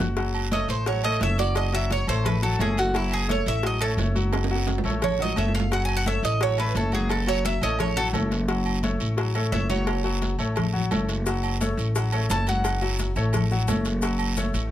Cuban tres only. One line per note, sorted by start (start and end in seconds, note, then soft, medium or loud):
0.53 0.69 D#5 medium
0.70 0.86 C5 medium
0.87 1.04 C#5 medium
1.04 1.21 D#5 loud
1.23 1.39 E5 medium
1.39 1.56 D5 loud
1.57 1.73 D#5 medium
1.75 1.91 E5 loud
1.92 2.08 C#5 medium
2.09 2.25 C5 medium
2.26 2.42 B4 medium
2.43 2.60 A4 medium
2.61 2.77 G#4 medium
2.79 2.95 F#4 medium
2.96 3.12 E4 medium
3.13 3.29 G#4 medium
3.31 3.47 C#5 medium
3.48 3.64 E5 loud
3.67 3.82 D#5 medium
3.82 3.92 A4 loud
5.04 5.20 C#5 medium
5.22 5.38 D#5 medium
5.38 5.54 E5 medium
5.55 5.71 F5 medium
5.73 5.84 F#5 medium
5.85 5.95 G#5 medium
5.97 6.07 F#5 loud
6.08 6.24 E5 medium
6.25 6.41 D#5 loud
6.43 6.59 C#5 medium
6.60 6.76 B4 medium
6.77 6.93 A4 medium
6.94 7.11 G#4 medium
7.11 7.28 A4 medium
7.28 7.45 C#5 loud
7.45 7.62 E5 loud
7.63 7.80 D#5 loud
7.80 7.97 C#5 medium
7.97 8.07 A4 loud
9.52 9.69 E5 medium
9.70 10.02 C#5 medium
12.31 12.47 A5 loud
12.49 12.80 F#5 medium